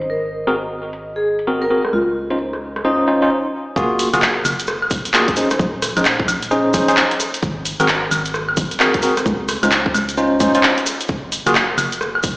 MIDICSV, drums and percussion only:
0, 0, Header, 1, 2, 480
1, 0, Start_track
1, 0, Tempo, 458015
1, 105, Time_signature, 4, 2, 24, 8
1, 12961, End_track
2, 0, Start_track
2, 0, Title_t, "Drums"
2, 15, Note_on_c, 9, 42, 63
2, 120, Note_off_c, 9, 42, 0
2, 496, Note_on_c, 9, 42, 66
2, 601, Note_off_c, 9, 42, 0
2, 975, Note_on_c, 9, 42, 66
2, 1080, Note_off_c, 9, 42, 0
2, 1456, Note_on_c, 9, 42, 63
2, 1561, Note_off_c, 9, 42, 0
2, 1695, Note_on_c, 9, 42, 53
2, 1800, Note_off_c, 9, 42, 0
2, 1934, Note_on_c, 9, 37, 62
2, 1934, Note_on_c, 9, 42, 64
2, 2039, Note_off_c, 9, 37, 0
2, 2039, Note_off_c, 9, 42, 0
2, 2414, Note_on_c, 9, 42, 64
2, 2519, Note_off_c, 9, 42, 0
2, 2655, Note_on_c, 9, 37, 30
2, 2655, Note_on_c, 9, 42, 36
2, 2759, Note_off_c, 9, 37, 0
2, 2759, Note_off_c, 9, 42, 0
2, 2894, Note_on_c, 9, 37, 49
2, 2894, Note_on_c, 9, 42, 62
2, 2999, Note_off_c, 9, 37, 0
2, 2999, Note_off_c, 9, 42, 0
2, 3375, Note_on_c, 9, 42, 61
2, 3480, Note_off_c, 9, 42, 0
2, 3942, Note_on_c, 9, 36, 117
2, 3950, Note_on_c, 9, 70, 40
2, 4047, Note_off_c, 9, 36, 0
2, 4055, Note_off_c, 9, 70, 0
2, 4184, Note_on_c, 9, 46, 109
2, 4185, Note_on_c, 9, 70, 89
2, 4289, Note_off_c, 9, 46, 0
2, 4290, Note_off_c, 9, 70, 0
2, 4334, Note_on_c, 9, 42, 66
2, 4334, Note_on_c, 9, 76, 77
2, 4335, Note_on_c, 9, 70, 47
2, 4423, Note_on_c, 9, 39, 117
2, 4428, Note_off_c, 9, 70, 0
2, 4428, Note_on_c, 9, 70, 37
2, 4439, Note_off_c, 9, 42, 0
2, 4439, Note_off_c, 9, 76, 0
2, 4528, Note_off_c, 9, 39, 0
2, 4533, Note_off_c, 9, 70, 0
2, 4664, Note_on_c, 9, 46, 95
2, 4664, Note_on_c, 9, 76, 74
2, 4665, Note_on_c, 9, 70, 94
2, 4768, Note_off_c, 9, 46, 0
2, 4768, Note_off_c, 9, 76, 0
2, 4770, Note_off_c, 9, 70, 0
2, 4816, Note_on_c, 9, 42, 67
2, 4816, Note_on_c, 9, 70, 52
2, 4894, Note_off_c, 9, 70, 0
2, 4894, Note_on_c, 9, 70, 41
2, 4904, Note_on_c, 9, 37, 70
2, 4921, Note_off_c, 9, 42, 0
2, 4999, Note_off_c, 9, 70, 0
2, 5009, Note_off_c, 9, 37, 0
2, 5055, Note_on_c, 9, 76, 58
2, 5141, Note_on_c, 9, 70, 96
2, 5143, Note_on_c, 9, 36, 108
2, 5144, Note_on_c, 9, 46, 111
2, 5160, Note_off_c, 9, 76, 0
2, 5246, Note_off_c, 9, 70, 0
2, 5248, Note_off_c, 9, 36, 0
2, 5249, Note_off_c, 9, 46, 0
2, 5296, Note_on_c, 9, 42, 63
2, 5298, Note_on_c, 9, 70, 55
2, 5384, Note_on_c, 9, 39, 122
2, 5387, Note_off_c, 9, 70, 0
2, 5387, Note_on_c, 9, 70, 43
2, 5400, Note_off_c, 9, 42, 0
2, 5489, Note_off_c, 9, 39, 0
2, 5492, Note_off_c, 9, 70, 0
2, 5534, Note_on_c, 9, 36, 107
2, 5535, Note_on_c, 9, 42, 53
2, 5620, Note_on_c, 9, 70, 88
2, 5624, Note_on_c, 9, 46, 97
2, 5638, Note_off_c, 9, 36, 0
2, 5640, Note_off_c, 9, 42, 0
2, 5725, Note_off_c, 9, 70, 0
2, 5729, Note_off_c, 9, 46, 0
2, 5768, Note_on_c, 9, 70, 57
2, 5775, Note_on_c, 9, 37, 70
2, 5775, Note_on_c, 9, 42, 67
2, 5863, Note_on_c, 9, 36, 127
2, 5870, Note_off_c, 9, 70, 0
2, 5870, Note_on_c, 9, 70, 44
2, 5880, Note_off_c, 9, 37, 0
2, 5880, Note_off_c, 9, 42, 0
2, 5968, Note_off_c, 9, 36, 0
2, 5975, Note_off_c, 9, 70, 0
2, 6103, Note_on_c, 9, 37, 71
2, 6103, Note_on_c, 9, 46, 106
2, 6105, Note_on_c, 9, 70, 91
2, 6208, Note_off_c, 9, 37, 0
2, 6208, Note_off_c, 9, 46, 0
2, 6209, Note_off_c, 9, 70, 0
2, 6253, Note_on_c, 9, 42, 62
2, 6253, Note_on_c, 9, 76, 77
2, 6258, Note_on_c, 9, 70, 50
2, 6339, Note_off_c, 9, 70, 0
2, 6339, Note_on_c, 9, 70, 43
2, 6341, Note_on_c, 9, 39, 117
2, 6358, Note_off_c, 9, 42, 0
2, 6358, Note_off_c, 9, 76, 0
2, 6444, Note_off_c, 9, 70, 0
2, 6446, Note_off_c, 9, 39, 0
2, 6493, Note_on_c, 9, 36, 112
2, 6583, Note_on_c, 9, 46, 89
2, 6583, Note_on_c, 9, 76, 76
2, 6587, Note_on_c, 9, 70, 106
2, 6598, Note_off_c, 9, 36, 0
2, 6687, Note_off_c, 9, 46, 0
2, 6687, Note_off_c, 9, 76, 0
2, 6691, Note_off_c, 9, 70, 0
2, 6733, Note_on_c, 9, 42, 65
2, 6739, Note_on_c, 9, 70, 54
2, 6822, Note_off_c, 9, 70, 0
2, 6822, Note_on_c, 9, 70, 42
2, 6838, Note_off_c, 9, 42, 0
2, 6927, Note_off_c, 9, 70, 0
2, 7058, Note_on_c, 9, 70, 91
2, 7063, Note_on_c, 9, 36, 109
2, 7063, Note_on_c, 9, 46, 107
2, 7163, Note_off_c, 9, 70, 0
2, 7168, Note_off_c, 9, 36, 0
2, 7168, Note_off_c, 9, 46, 0
2, 7214, Note_on_c, 9, 42, 63
2, 7227, Note_on_c, 9, 70, 55
2, 7302, Note_off_c, 9, 70, 0
2, 7302, Note_on_c, 9, 70, 41
2, 7304, Note_on_c, 9, 39, 121
2, 7319, Note_off_c, 9, 42, 0
2, 7407, Note_off_c, 9, 70, 0
2, 7408, Note_off_c, 9, 39, 0
2, 7454, Note_on_c, 9, 42, 51
2, 7543, Note_on_c, 9, 37, 33
2, 7543, Note_on_c, 9, 46, 93
2, 7546, Note_on_c, 9, 70, 98
2, 7559, Note_off_c, 9, 42, 0
2, 7648, Note_off_c, 9, 37, 0
2, 7648, Note_off_c, 9, 46, 0
2, 7651, Note_off_c, 9, 70, 0
2, 7693, Note_on_c, 9, 42, 65
2, 7697, Note_on_c, 9, 70, 51
2, 7782, Note_on_c, 9, 36, 127
2, 7785, Note_off_c, 9, 70, 0
2, 7785, Note_on_c, 9, 70, 41
2, 7798, Note_off_c, 9, 42, 0
2, 7887, Note_off_c, 9, 36, 0
2, 7890, Note_off_c, 9, 70, 0
2, 8021, Note_on_c, 9, 46, 103
2, 8024, Note_on_c, 9, 70, 95
2, 8126, Note_off_c, 9, 46, 0
2, 8129, Note_off_c, 9, 70, 0
2, 8173, Note_on_c, 9, 42, 64
2, 8173, Note_on_c, 9, 76, 78
2, 8176, Note_on_c, 9, 70, 55
2, 8258, Note_off_c, 9, 70, 0
2, 8258, Note_on_c, 9, 70, 44
2, 8261, Note_on_c, 9, 39, 123
2, 8277, Note_off_c, 9, 42, 0
2, 8277, Note_off_c, 9, 76, 0
2, 8363, Note_off_c, 9, 70, 0
2, 8366, Note_off_c, 9, 39, 0
2, 8502, Note_on_c, 9, 46, 87
2, 8502, Note_on_c, 9, 76, 79
2, 8505, Note_on_c, 9, 70, 91
2, 8607, Note_off_c, 9, 46, 0
2, 8607, Note_off_c, 9, 76, 0
2, 8610, Note_off_c, 9, 70, 0
2, 8651, Note_on_c, 9, 70, 51
2, 8652, Note_on_c, 9, 42, 64
2, 8741, Note_on_c, 9, 37, 70
2, 8742, Note_off_c, 9, 70, 0
2, 8742, Note_on_c, 9, 70, 40
2, 8757, Note_off_c, 9, 42, 0
2, 8846, Note_off_c, 9, 37, 0
2, 8847, Note_off_c, 9, 70, 0
2, 8893, Note_on_c, 9, 76, 59
2, 8979, Note_on_c, 9, 70, 94
2, 8981, Note_on_c, 9, 46, 104
2, 8982, Note_on_c, 9, 36, 111
2, 8998, Note_off_c, 9, 76, 0
2, 9084, Note_off_c, 9, 70, 0
2, 9086, Note_off_c, 9, 46, 0
2, 9087, Note_off_c, 9, 36, 0
2, 9131, Note_on_c, 9, 42, 60
2, 9133, Note_on_c, 9, 70, 52
2, 9220, Note_on_c, 9, 39, 125
2, 9225, Note_off_c, 9, 70, 0
2, 9225, Note_on_c, 9, 70, 41
2, 9236, Note_off_c, 9, 42, 0
2, 9325, Note_off_c, 9, 39, 0
2, 9330, Note_off_c, 9, 70, 0
2, 9371, Note_on_c, 9, 42, 52
2, 9372, Note_on_c, 9, 36, 111
2, 9455, Note_on_c, 9, 70, 99
2, 9460, Note_on_c, 9, 46, 88
2, 9476, Note_off_c, 9, 42, 0
2, 9477, Note_off_c, 9, 36, 0
2, 9560, Note_off_c, 9, 70, 0
2, 9565, Note_off_c, 9, 46, 0
2, 9613, Note_on_c, 9, 37, 70
2, 9613, Note_on_c, 9, 42, 65
2, 9614, Note_on_c, 9, 70, 54
2, 9702, Note_on_c, 9, 36, 124
2, 9704, Note_off_c, 9, 70, 0
2, 9704, Note_on_c, 9, 70, 43
2, 9717, Note_off_c, 9, 37, 0
2, 9717, Note_off_c, 9, 42, 0
2, 9807, Note_off_c, 9, 36, 0
2, 9809, Note_off_c, 9, 70, 0
2, 9939, Note_on_c, 9, 70, 88
2, 9941, Note_on_c, 9, 37, 66
2, 9941, Note_on_c, 9, 46, 97
2, 10044, Note_off_c, 9, 70, 0
2, 10046, Note_off_c, 9, 37, 0
2, 10046, Note_off_c, 9, 46, 0
2, 10093, Note_on_c, 9, 42, 65
2, 10093, Note_on_c, 9, 76, 84
2, 10098, Note_on_c, 9, 70, 54
2, 10176, Note_off_c, 9, 70, 0
2, 10176, Note_on_c, 9, 70, 42
2, 10182, Note_on_c, 9, 39, 121
2, 10197, Note_off_c, 9, 42, 0
2, 10197, Note_off_c, 9, 76, 0
2, 10280, Note_off_c, 9, 70, 0
2, 10287, Note_off_c, 9, 39, 0
2, 10333, Note_on_c, 9, 36, 111
2, 10422, Note_on_c, 9, 46, 87
2, 10422, Note_on_c, 9, 76, 79
2, 10427, Note_on_c, 9, 70, 101
2, 10437, Note_off_c, 9, 36, 0
2, 10527, Note_off_c, 9, 46, 0
2, 10527, Note_off_c, 9, 76, 0
2, 10532, Note_off_c, 9, 70, 0
2, 10571, Note_on_c, 9, 42, 64
2, 10574, Note_on_c, 9, 70, 55
2, 10661, Note_off_c, 9, 70, 0
2, 10661, Note_on_c, 9, 70, 39
2, 10676, Note_off_c, 9, 42, 0
2, 10766, Note_off_c, 9, 70, 0
2, 10901, Note_on_c, 9, 70, 97
2, 10902, Note_on_c, 9, 36, 110
2, 10902, Note_on_c, 9, 46, 102
2, 11006, Note_off_c, 9, 46, 0
2, 11006, Note_off_c, 9, 70, 0
2, 11007, Note_off_c, 9, 36, 0
2, 11051, Note_on_c, 9, 70, 51
2, 11053, Note_on_c, 9, 42, 60
2, 11141, Note_off_c, 9, 70, 0
2, 11141, Note_on_c, 9, 70, 40
2, 11142, Note_on_c, 9, 39, 126
2, 11158, Note_off_c, 9, 42, 0
2, 11246, Note_off_c, 9, 70, 0
2, 11247, Note_off_c, 9, 39, 0
2, 11294, Note_on_c, 9, 42, 50
2, 11384, Note_on_c, 9, 37, 31
2, 11384, Note_on_c, 9, 46, 88
2, 11384, Note_on_c, 9, 70, 101
2, 11399, Note_off_c, 9, 42, 0
2, 11488, Note_off_c, 9, 37, 0
2, 11488, Note_off_c, 9, 46, 0
2, 11489, Note_off_c, 9, 70, 0
2, 11535, Note_on_c, 9, 42, 65
2, 11535, Note_on_c, 9, 70, 54
2, 11613, Note_off_c, 9, 70, 0
2, 11613, Note_on_c, 9, 70, 37
2, 11623, Note_on_c, 9, 36, 120
2, 11640, Note_off_c, 9, 42, 0
2, 11718, Note_off_c, 9, 70, 0
2, 11728, Note_off_c, 9, 36, 0
2, 11864, Note_on_c, 9, 46, 99
2, 11867, Note_on_c, 9, 70, 97
2, 11969, Note_off_c, 9, 46, 0
2, 11971, Note_off_c, 9, 70, 0
2, 12014, Note_on_c, 9, 70, 54
2, 12017, Note_on_c, 9, 42, 68
2, 12017, Note_on_c, 9, 76, 82
2, 12104, Note_off_c, 9, 70, 0
2, 12104, Note_on_c, 9, 70, 42
2, 12106, Note_on_c, 9, 39, 118
2, 12121, Note_off_c, 9, 42, 0
2, 12121, Note_off_c, 9, 76, 0
2, 12209, Note_off_c, 9, 70, 0
2, 12210, Note_off_c, 9, 39, 0
2, 12344, Note_on_c, 9, 46, 88
2, 12344, Note_on_c, 9, 76, 79
2, 12346, Note_on_c, 9, 70, 96
2, 12448, Note_off_c, 9, 46, 0
2, 12448, Note_off_c, 9, 76, 0
2, 12451, Note_off_c, 9, 70, 0
2, 12496, Note_on_c, 9, 42, 68
2, 12497, Note_on_c, 9, 70, 52
2, 12585, Note_on_c, 9, 37, 64
2, 12589, Note_off_c, 9, 70, 0
2, 12589, Note_on_c, 9, 70, 40
2, 12601, Note_off_c, 9, 42, 0
2, 12690, Note_off_c, 9, 37, 0
2, 12694, Note_off_c, 9, 70, 0
2, 12736, Note_on_c, 9, 76, 61
2, 12818, Note_on_c, 9, 70, 96
2, 12823, Note_on_c, 9, 36, 102
2, 12825, Note_on_c, 9, 46, 105
2, 12841, Note_off_c, 9, 76, 0
2, 12923, Note_off_c, 9, 70, 0
2, 12928, Note_off_c, 9, 36, 0
2, 12930, Note_off_c, 9, 46, 0
2, 12961, End_track
0, 0, End_of_file